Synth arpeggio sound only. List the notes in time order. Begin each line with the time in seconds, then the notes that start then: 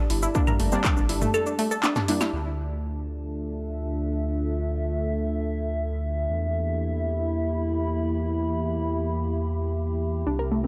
0.10 E4
0.23 E4
0.35 D4
0.47 A#4
0.60 A3
0.72 C4
0.84 D4
0.97 D4
1.09 E4
1.22 A3
1.34 A4
1.46 D4
1.59 A3
1.71 A4
1.84 D4
1.96 D4
2.09 E4
2.21 E4
10.27 D4
10.39 A#4
10.52 A3
10.64 C4